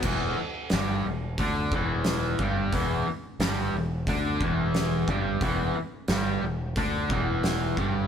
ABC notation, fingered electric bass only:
X:1
M:4/4
L:1/8
Q:1/4=89
K:Em
V:1 name="Fingered electric bass" clef=bass
E,,, z G,,, E,,, D,, E,,,2 G,,, | E,,, z G,,, E,,, D,, E,,,2 G,,, | E,,, z G,,, E,,, D,, E,,,2 G,,, |]